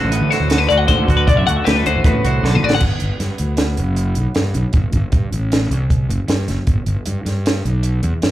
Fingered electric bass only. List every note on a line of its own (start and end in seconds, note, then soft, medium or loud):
0.03 0.20 A1 medium
0.21 0.30 D3 medium
0.40 0.67 D2 medium
0.71 0.88 D2 medium
0.89 0.98 D2 loud
0.99 1.07 D2 loud
1.08 1.26 D2 loud
1.29 1.37 C2 medium
1.38 1.47 F#2 loud
1.48 1.56 D2 medium
1.67 1.84 D2 loud
1.86 1.95 D2 medium
1.96 2.04 A1 loud
2.04 2.13 A1 loud
2.24 2.42 C2 medium
2.43 2.61 B1 medium
2.62 2.80 A1 medium
2.82 2.91 G1 loud
3.02 3.10 G1 medium
3.20 3.29 G2 medium
3.40 3.75 D2 medium
3.78 4.13 F#1 medium
4.17 4.26 B1 medium
4.36 4.54 G2 medium
4.55 4.64 B1 medium
4.74 4.83 G1 loud
4.94 5.03 G1 medium
5.12 5.22 G2 medium
5.32 5.67 A1 medium
5.70 6.06 C2 medium
6.09 6.18 F#1 medium
6.28 6.46 G2 medium
6.48 6.57 F#1 medium
6.68 6.77 G1 medium
6.87 6.96 G1 medium
7.07 7.16 G2 medium
7.26 7.60 G2 medium
7.65 8.00 B1 medium
8.03 8.12 E2 medium
8.23 8.31 G2 medium